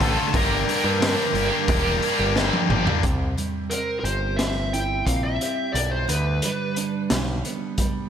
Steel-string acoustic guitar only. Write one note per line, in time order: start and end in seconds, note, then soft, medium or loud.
3.05 4.74 C3 medium
3.37 6.07 G3 medium
3.72 4.39 C4 medium
4.06 5.41 G4 medium
4.41 5.06 C4 medium
4.74 5.76 E4 medium
5.07 5.75 C4 medium
5.42 6.77 G4 medium
5.75 7.45 G2 medium
6.08 7.78 D3 medium
6.44 7.10 G3 medium
6.77 8.09 D4 medium
7.11 7.78 G3 medium
7.45 8.09 B3 medium
7.79 8.09 G3 medium